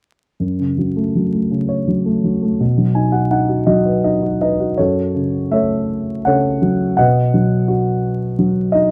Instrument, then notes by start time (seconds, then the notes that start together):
grand piano
0.40 F#2
0.59 C#3
0.78 F#3
0.96 A3
1.16 F#3
1.33 A3
1.51 C#3
1.69 C#5
1.88 F#3
2.06 A3
2.24 F#3
2.42 A3
2.60 B2
2.77 F#3
2.95 D#4 G#5
3.12 F#4 F#5
3.31 D#4 F#5
3.49 F#4
3.66 F#3 D#5
3.86 B4
4.04 D#4 D#5
4.22 F#4
4.41 D#4 B4 D#5
4.60 F#4
4.77 F#2 F#4 A4 C#5
5.14 C#3
5.51 A3 A4 C#5 E5
6.25 C#3 A4 C#5 F#5
6.62 F#3
6.97 B2 B4 D#5 F#5
7.34 F#3
7.68 F#4
8.39 F#3
8.72 D#4 D#5